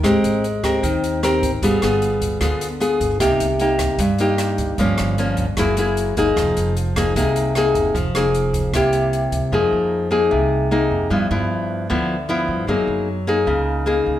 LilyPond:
<<
  \new Staff \with { instrumentName = "Nylon-string guitar" } { \time 4/4 \key f \minor \tempo 4 = 152 << { <c' g' bes'>4 r8 <c' g' bes'>4. <c' g' bes'>8 r8 | <b f' aes'>8 <b f' aes'>4. <b f' aes'>8 r8 <b f' aes'>4 | <bes ees' g'>8 r8 <bes ees' g'>4 r8 <bes ees' g'>4. | <f bes des'>4 <f bes des'>8 r8 <bes fes' aes'>8 <bes fes' aes'>4 <bes ees' aes'>8~ |
<bes ees' aes'>4 r8 <bes ees' aes'>8 <bes ees' aes'>4 <bes ees' aes'>4 | r8 <bes ees' aes'>4. <bes e' g'>2 | <bes ees' aes'>4. <bes ees' aes'>4. <bes ees' aes'>4 | <f b e'>8 <f b e'>4. <f b e'>8 r8 <f b e'>4 |
<bes ees' aes'>4 r8 <bes ees' aes'>4. <bes ees' aes'>4 | } \\ { aes2 ees2 | g2 d2 | c2 g,2 | g,2 ges2 |
f2 c2 | f2 c2 | f2 c2 | g,2 d2 |
ges2 des2 | } >> }
  \new Staff \with { instrumentName = "Upright bass" } { \clef bass \time 4/4 \key f \minor aes,,8 aes,,4. ees,4. aes,,8 | g,,8 g,,4. d,4. g,,8 | c,8 c,4. g,4. aes,,8 | g,,8 g,,4. ges,,4. ges,,8 |
f,,8 f,,4. c,4. f,,8 | f,,8 f,,4. c,4. c,8 | f,8 f,4. c,4. f,8 | g,8 g,4. d,4. g,8 |
ges,8 ges,4. des,4. des,8 | }
  \new DrumStaff \with { instrumentName = "Drums" } \drummode { \time 4/4 <hh bd ss>8 hh8 hh8 <hh bd ss>8 <hh bd>8 hh8 <hh ss>8 <hh bd>8 | <hh bd>8 <hh ss>8 hh8 <hh bd>8 <hh bd ss>8 hh8 hh8 <hh bd>8 | <hh bd ss>8 hh8 hh8 <hh bd ss>8 <hh bd>8 hh8 <hh ss>8 <hh bd>8 | <hh bd>8 <hh ss>8 hh8 <hh bd>8 <hh bd ss>8 hh8 hh8 <hh bd>8 |
<hh bd ss>8 hh8 hh8 <hh bd ss>8 <hh bd>8 hh8 <hh ss>8 <hh bd>8 | <hh bd>8 <hh ss>8 hh8 <hh bd>8 <hh bd ss>8 hh8 hh8 <hh bd>8 | r4 r4 r4 r4 | r4 r4 r4 r4 |
r4 r4 r4 r4 | }
>>